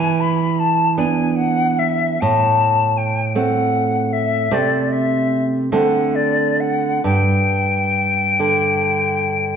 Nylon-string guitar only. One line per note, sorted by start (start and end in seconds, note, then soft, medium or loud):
0.00 2.17 E3 medium
0.98 2.17 B3 soft
0.98 2.18 D4 soft
2.22 4.48 A2 medium
3.35 4.47 A3 soft
3.35 4.48 C4 soft
4.51 5.69 C3 medium
4.51 5.68 A3 soft
4.51 5.69 C4 soft
5.72 7.00 D3 medium
5.72 7.00 A3 soft
5.72 7.00 C4 soft
7.04 9.56 G2 medium
8.39 9.56 D3 soft